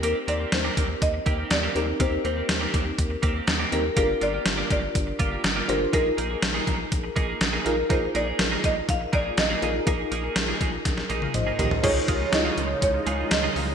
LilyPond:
<<
  \new Staff \with { instrumentName = "Marimba" } { \time 4/4 \key ees \major \tempo 4 = 122 bes'8 d''8 c''4 ees''4 d''4 | c''8 c''2 r4 bes'8 | bes'8 d''4 d''4. r8 bes'8 | bes'2 r4. bes'8 |
c''8 d''4 ees''8 f''8 d''8 ees''8 bes'8~ | bes'4. r2 r8 | r4 ees''4 des''4 ees''4 | }
  \new Staff \with { instrumentName = "FM electric piano" } { \time 4/4 \key ees \major << { r1 | r1 | r1 | r1 |
r1 | r2. <c'' ees''>8 <g' bes'>8~ | <g' bes'>8 r2. r8 | } \\ { <c' ees' g' bes'>4 r2 r8 <c' ees' g' bes'>8 | <c' ees' g' bes'>4~ <c' ees' g' bes'>16 r2 r16 <c' ees' g' bes'>8 | <d' f' g' aes' bes'>4~ <d' f' g' aes' bes'>16 r2 r16 <d' f' g' c''>8 | <ees' f' aes' bes'>4~ <ees' f' aes' bes'>16 r2 r16 <ees' f' aes' bes'>8 |
<ees' f' aes' bes'>4~ <ees' f' aes' bes'>16 r2 r16 <ees' f' aes' bes'>8 | <ees' f' aes' bes'>4~ <ees' f' aes' bes'>16 r2 r8. | <ees' f' aes' des''>8 r8 <ees' fes' f' aes' des''>4~ <ees' fes' f' aes' des''>16 r4. r16 | } >> }
  \new Staff \with { instrumentName = "Clean electric guitar" } { \time 4/4 \key ees \major <bes c' g'>16 r16 <bes c' g'>16 <bes c' g'>16 r16 <bes c' g'>16 <bes c' g'>16 r8. <bes c' g'>16 <bes c' g'>16 r16 <bes c' g'>16 <bes c' g'>16 r16 | <bes c' g'>16 r16 <bes c' g'>16 <bes c' g'>16 r16 <bes c' g'>16 <bes c' g'>16 r8. <bes c' g'>16 <bes c' g'>16 r16 <bes c' g'>16 <bes c' g'>16 r16 | <bes f' g'>16 r16 <bes f' g'>16 <bes f' g'>16 r16 <bes f' g'>16 <bes f' g'>16 r8. <bes f' g'>16 <bes f' g'>16 r16 <bes f' g'>16 <bes f' g'>16 r16 | <bes ees' aes'>16 r16 <bes ees' aes'>16 <bes ees' aes'>16 r16 <bes ees' aes'>16 <bes ees' aes'>16 r8. <bes ees' aes'>16 <bes ees' aes'>16 r16 <bes ees' aes'>16 <bes ees' aes'>16 r16 |
<bes ees' aes'>16 r16 <bes ees' aes'>16 <bes ees' aes'>16 r16 <bes ees' aes'>16 <bes ees' aes'>16 r8. <bes ees' aes'>16 <bes ees' aes'>16 r16 <bes ees' aes'>16 <bes ees' aes'>16 r16 | <bes ees' aes'>16 r16 <bes ees' aes'>16 <bes ees' aes'>16 r16 <bes ees' aes'>16 <bes ees' aes'>16 r8. <bes ees' aes'>16 <bes ees' aes'>16 r16 <bes ees' aes'>16 <bes ees' aes'>16 r16 | <aes ees' f'>16 r16 <aes ees' f'>16 <aes ees' f'>16 r16 <aes ees' f'>16 <aes ees' f'>16 r8. <aes ees' f'>16 <aes ees' f'>16 r16 <aes ees' f'>16 <aes ees' f'>16 r16 | }
  \new Staff \with { instrumentName = "Analog synth pad" } { \clef bass \time 4/4 \key ees \major r1 | r1 | r1 | r1 |
r1 | r1 | <des f aes ees'>1 | }
  \new Staff \with { instrumentName = "Analog synth bass" } { \clef bass \time 4/4 \key ees \major ees,8 ees,8 ees,8 ees,8 ees,8 ees,8 ees,8 ees,8 | ees,8 ees,8 ees,8 ees,8 ees,8 ees,8 ees,8 ees,8 | g,,8 g,,8 g,,8 g,,8 g,,8 g,,8 g,,8 g,,8 | bes,,8 bes,,8 bes,,8 bes,,8 bes,,8 bes,,8 bes,,8 bes,,8 |
bes,,8 bes,,8 bes,,8 bes,,8 bes,,8 bes,,8 bes,,8 bes,,8 | bes,,8 bes,,8 bes,,8 bes,,8 bes,,8 bes,,8 bes,,8 bes,,8 | des,8 des,8 des,8 des,8 des,8 des,8 des,8 des,8 | }
  \new DrumStaff \with { instrumentName = "Drums" } \drummode { \time 4/4 hh8 hh8 <hh sn>8 <hh bd>8 <hh bd>8 <hh bd>8 <hh sn>8 hh8 | <hh bd>8 hh8 <hh sn>8 <hh bd>8 <hh bd>8 <hh bd>8 <hh sn>8 hh8 | <hh bd>8 hh8 <hh sn>8 <hh bd>8 <hh bd>8 <hh bd>8 <hh sn>8 hh8 | <hh bd>8 hh8 <hh sn>8 <hh bd>8 <hh bd>8 <hh bd>8 <hh sn>8 hh8 |
<hh bd>8 hh8 <hh sn>8 <hh bd>8 <hh bd>8 <hh bd>8 <hh sn>8 hh8 | <hh bd>8 hh8 <hh sn>8 <hh bd>8 <hh bd sn>16 sn16 hh16 tommh16 <hh toml>8 <hh tomfh>16 tomfh16 | <cymc hh bd>8 <hh bd>8 <hh sn>8 hh8 <hh bd>8 hh8 <hh sn>8 hho8 | }
>>